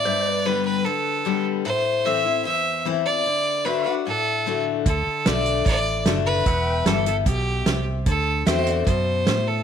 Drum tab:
HH |--------|--------|--------|x-xxx-x-|
SD |--------|--------|--------|--o---o-|
BD |--------|--------|--------|o---o---|

HH |x-xxx-x-|x-xxx-x-|
SD |--o---o-|--o---o-|
BD |o---o---|o---o---|